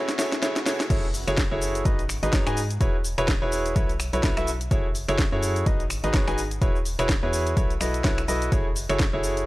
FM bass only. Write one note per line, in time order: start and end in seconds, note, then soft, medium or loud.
0.90 1.25 F#1 loud
1.27 1.49 F#1 medium
1.51 1.83 F#1 loud
1.85 2.20 G#1 loud
2.23 2.31 G#1 loud
2.33 2.44 G#1 loud
2.47 2.79 G#2 medium
2.81 3.15 E1 loud
3.18 3.39 E1 loud
3.42 3.74 E1 loud
3.76 4.11 B1 loud
4.13 4.21 B1 loud
4.23 4.34 B1 loud
4.37 4.69 B1 medium
4.71 5.06 F#1 loud
5.08 5.30 F#1 loud
5.32 5.64 F#2 loud
5.66 6.01 G#1 loud
6.04 6.12 G#1 loud
6.14 6.25 G#1 loud
6.28 6.60 G#1 medium
6.62 6.96 E1 loud
6.99 7.20 E1 medium
7.23 7.55 E2 medium
7.57 7.79 B1 loud
7.81 8.02 B1 medium
8.04 8.26 B1 loud
8.28 8.50 B1 loud
8.52 8.87 F#1 loud
8.89 9.11 F#1 medium
9.13 9.45 F#1 loud